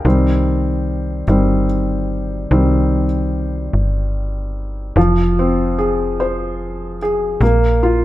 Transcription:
0.05 fm bass C2, felt piano D#3 G3 C4
1.28 fm bass G1, felt piano D#3 G3 C4
2.51 fm bass C2, felt piano D#3 G3 C4
3.73 fm bass G1
4.96 fm bass F1, felt piano F3
5.39 felt piano C4
5.78 felt piano G#4
6.20 felt piano C5
7.02 felt piano G#4
7.41 fm bass A#1, felt piano A#3
7.83 felt piano F4

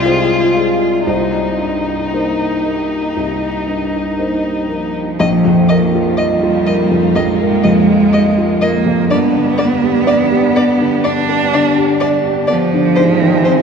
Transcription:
Already playing: upright piano C2 C3 G#3 F4 C5 D5 D#5, string section G#3 C4 F4, violin F4
0.05 upright piano G#3 F4 C5, cello G#4
0.55 upright piano G#3, cello F4
1.07 upright piano C2 C5, string section A#3 D#4 G4, violin D#4, cello D#4
1.60 upright piano G2
2.13 upright piano A#3 D#4 C5
2.65 upright piano A#3
3.17 upright piano C2
3.67 upright piano G2
4.18 upright piano A#3 D#4 C5
4.68 cello F3, upright piano A#3
5.20 upright piano A#1, string section A#3 D#4 F4, violin D#5
5.45 upright piano F2
5.69 upright piano A#3, violin D#5
5.95 upright piano F4
6.17 cello G3, violin D#5, upright piano D#5
6.43 upright piano F4
6.67 upright piano A#3, violin D#5
6.91 upright piano F2
7.15 upright piano A#1, cello G#3, violin D#5
7.41 upright piano A#3
7.64 upright piano F2, violin D#5
7.89 upright piano F4
8.13 violin D#5, upright piano D#5
8.38 upright piano F4
8.61 upright piano A#3, cello A#3, violin D#5
8.86 upright piano F2
9.10 upright piano G2, string section G3 D4 G4, cello B3, violin D5
9.35 upright piano D3
9.58 upright piano B3, violin D5
9.84 upright piano G4
10.07 upright piano D5, violin D5
10.32 upright piano G4
10.56 upright piano B3, violin D5
10.81 upright piano D3
11.04 upright piano G2, cello D4, violin D5
11.29 upright piano B3
11.53 upright piano D3, violin D5
11.78 upright piano G4
12.00 violin D5, upright piano D5
12.25 upright piano G4
12.47 cello F3, upright piano B3, violin D5
12.74 upright piano D3
12.96 upright piano G#2, string section C4 D#4 G#5, violin C5
13.22 upright piano D#3
13.45 upright piano C4, violin C5

